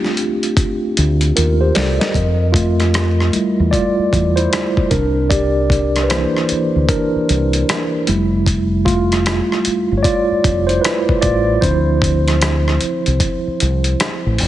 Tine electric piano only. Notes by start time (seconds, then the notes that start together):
Already playing: A3 C4 D4 F4 G4
1.36 F4 A#4
1.61 G4 C5
1.75 A4 D5
2.00 A#4 D#5
2.52 A3 F4
3.33 G3 A3 E4
3.71 F4 D5
4.36 E4 C5
4.90 D4 A#4
5.29 G4 D5
6.03 B4
6.09 E3 A#3 D4 E4 C5
6.89 D4 A#4
8.08 G3 A3 E4
8.85 A3 F4
9.97 C#5
10.03 F4 D5
10.67 E4 C5
10.81 E4 B4
11.21 F4 D5
11.61 F3 C4 E4 C5